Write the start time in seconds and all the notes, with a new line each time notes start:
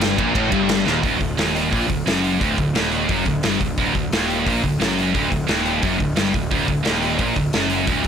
Already playing: G1 G2
0.01 snare, ride
0.17 A#1 A#2, kick, ride
0.34 A1 A2, kick, ride
0.50 G1 G2, kick, ride
0.69 snare, ride
0.85 D#1 D#2, snare
1.03 D1 D2, kick, open hi-hat
1.20 D1 D2, kick, open hi-hat
1.37 D#1 D#2, snare, open hi-hat
1.56 open hi-hat
1.71 A#1 A#2, kick, open hi-hat
1.88 D1 D2, kick, open hi-hat
2.06 F#1 F#2, snare, open hi-hat
2.24 open hi-hat
2.41 D1 D2, kick, open hi-hat
2.58 D1 D2, kick, open hi-hat
2.75 D#1 D#2, snare, open hi-hat
2.92 open hi-hat
3.09 F#1 F#2, kick, open hi-hat
3.26 D1 D2, kick, open hi-hat
3.43 G1 G2, snare, open hi-hat
3.61 D1 D2, kick, open hi-hat
3.78 D1 D2, kick, open hi-hat
3.95 D1 D2, kick, open hi-hat
4.11 D#1 D#2, snare, open hi-hat
4.30 open hi-hat
4.46 A#1 A#2, kick, open hi-hat
4.64 D1 D2, kick, open hi-hat
4.80 F#1 F#2, snare, open hi-hat
4.98 open hi-hat
5.14 D1 D2, kick, open hi-hat
5.30 D1 D2, kick, open hi-hat
5.47 D#1 D#2, snare, open hi-hat
5.66 open hi-hat
5.82 F#1 F#2, kick, open hi-hat
5.98 D1 D2, kick, open hi-hat
6.16 G1 G2, snare, open hi-hat
6.34 D1 D2, kick, open hi-hat
6.51 D1 D2, kick, open hi-hat
6.68 D1 D2, kick, open hi-hat
6.83 D#1 D#2, snare, open hi-hat
7.02 open hi-hat
7.18 A#1 A#2, kick, open hi-hat
7.36 D1 D2, kick, open hi-hat
7.53 F#1 F#2, snare, open hi-hat
7.70 open hi-hat
7.87 D1 D2, kick, open hi-hat
8.04 D2, open hi-hat